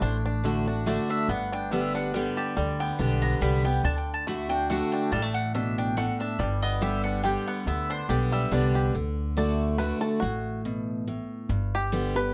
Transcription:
Already playing: A3 D4
0.01 A1 A2 D4 C5
0.26 D4
0.44 D3 A3 D4 F#4
0.67 D4 F#4
0.86 D3 A3 D4 F#4 D5
1.10 D4 E5
1.29 G1 G2 B3 F#5
1.52 D4 G5
1.71 D3 G3 B3 G4 E5
1.95 D4 F#5
2.14 D3 G3 B3 G4 G5
2.37 G4 A5
2.56 D2 D3 G3 D5
2.80 B3 G5
2.99 B1 D3 G3 B3 D4 G4
3.22 B3 A#5
3.41 C2 D3 G3 B3 G4 B5
3.64 B3 G4 G5
3.84 D2 D3 D4 A5
3.98 G5
4.14 A5
4.27 D3 A3 D4 F#4 B5
4.49 D4 F#4 G5
4.70 D3 A3 D4 F#4 F#5
4.92 D4 G5
5.12 A1 A2 G3 A5
5.22 A3
5.34 F#5
5.55 B2 D4 E5
5.78 D4 G5
5.97 A2 A3 F#5
6.20 D4 E5
6.39 G1 G2 G3 D5
6.62 B3 D#5
6.81 D3 G3 B3 G4 E5
7.04 D4 F#5
7.23 D3 G3 B3 G4 G5
7.47 B3 F#5
7.66 D2 D3 B3 E5
7.90 D4 C5
8.09 B1 D3 G3 B3 G4 D5
8.32 G3 E5
8.51 C2 D3 G3 B3 D4 G4 D5
8.75 G4
8.95 D2 D3
9.37 D3 A3 D4 F#4 D5
9.78 D3 A3 D4 F#4 B4
10.01 A4
10.20 A1 A2 F#4
10.65 B2
11.08 A2
11.49 G1 G2
11.75 G4
11.92 D3 G3 B3 G4
12.15 B3 G4 B4

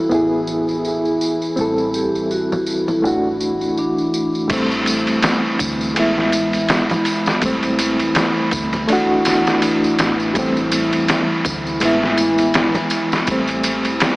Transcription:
Already playing: E3 G3 C4 E4 A4
0.09 A1 B3 E4, tambourine
0.14 G#4
0.47 tambourine
0.69 tambourine
0.85 tambourine
1.05 tambourine
1.21 tambourine
1.42 tambourine
1.56 A1 G3 C4, tambourine
1.61 A4
1.78 tambourine
1.94 G4, tambourine
2.15 tambourine
2.31 F#4, tambourine
2.52 tambourine, low conga
2.66 tambourine
2.88 E4, tambourine, low conga
3.02 A1 A3 D4, tambourine
3.07 F#4
3.40 tambourine
3.61 tambourine
3.77 D4, tambourine
3.98 tambourine
4.14 tambourine
4.35 tambourine
4.48 A1 E3 G3 A3 E4, kick, crash, ride, tambourine
4.53 C4
4.71 tambourine
4.86 ride, tambourine
5.07 E1, ride, tambourine
5.22 snare, ride, tambourine
5.59 D2, kick, ride, tambourine
5.81 tambourine
5.94 A1 G#3 B3, ride, tambourine
5.99 E4
6.18 snare
6.32 ride, tambourine
6.53 ride, tambourine
6.69 snare, ride, tambourine
6.90 ride, tambourine, low conga
7.05 ride, tambourine
7.26 snare, tambourine
7.40 A1 G3 A3, kick, ride, tambourine
7.45 C4
7.63 ride, tambourine
7.79 ride, tambourine
7.99 E1, ride, tambourine
8.15 snare, ride, tambourine
8.51 D2, kick, ride, tambourine
8.73 ride, tambourine, low conga
8.87 A3 D4, ride, tambourine
8.92 F#4
9.25 snare, ride, tambourine
9.47 snare, tambourine
9.62 ride, tambourine
9.84 tambourine
9.99 A1, snare, ride, tambourine
10.20 tambourine
10.34 A1 G3 A3, kick, ride, tambourine
10.39 C4
10.57 tambourine
10.72 ride, tambourine
10.92 E1, ride, tambourine
11.08 snare, ride, tambourine
11.45 D2, kick, ride, tambourine
11.67 tambourine
11.80 A1 G#3 B3, ride, tambourine
11.85 E4
12.04 snare
12.18 ride, tambourine
12.38 ride, tambourine
12.54 snare, ride, tambourine
12.74 ride, tambourine, low conga
12.90 ride, tambourine
13.12 snare, tambourine
13.26 A1 G3 A3, kick, ride, tambourine
13.31 C4
13.47 ride, tambourine
13.63 ride, tambourine
13.85 E1, ride, tambourine
14.00 snare, ride, tambourine

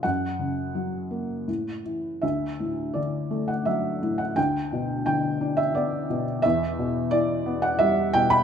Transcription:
0.03 F#2 F#5
0.39 C#3
0.75 F#3
1.11 A#3
1.48 A2
1.85 E3
2.22 D2 E5
2.60 A2
2.94 D3 D5
3.31 A3
3.48 F#5
3.65 F#3 E5
4.03 A2
4.18 F#5
4.36 D2 G5
4.73 B2
5.06 D3 G5
5.41 D4
5.57 E5
5.75 B3 D5
6.10 B2
6.42 E2 E5
6.79 B2
7.11 E3 D5
7.46 B3
7.62 F#5
7.79 G3 E5
8.13 B2 G5
8.30 B5

